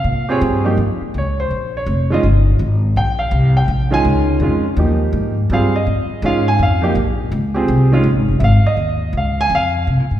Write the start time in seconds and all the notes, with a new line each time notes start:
Already playing: F5
0.04 A#2
0.29 C4 F4 G4 G#4 C#5
0.41 G2
0.64 F3 A#3 D#4 G4
0.77 F2
1.01 muted upright bass stroke
1.14 C#2 C#5
1.40 C5
1.51 A#1
1.77 C#5
1.86 F1
2.10 D#3 G#3 C#4 F4 D#5
2.23 G1
2.59 G#1
2.96 A#1 G5
3.19 F5
3.31 C2
3.57 G5
3.68 A#1
3.91 D#3 G#3 C#4 F4 G#5
4.04 C#2
4.40 F2 D#3 G#3 C#4 F4
4.77 D#2 F3 A#3 D#4 G4
5.13 G#2
5.50 G2 G3 C4 F4 G#4 F5
5.76 D#5
5.87 F2
6.09 muted upright bass stroke
6.22 G#2 D#3 G#3 C#4 F4 F5
6.48 G#5
6.59 F2 F5
6.82 F3 A#3 D#4 G4
6.95 A#1
7.32 C#2
7.54 C4 F4 G4 G#4
7.68 C2
7.92 D#3 G#3 C#4 F4
8.04 A#1
8.16 G#1
8.28 F1
8.39 G#1 E5
8.44 F5
8.63 D#5, muted upright bass stroke
8.77 D#2
9.13 C#2
9.17 F5
9.41 G#5
9.50 F2
9.55 F5
9.87 C3
9.99 A#2
10.11 G#2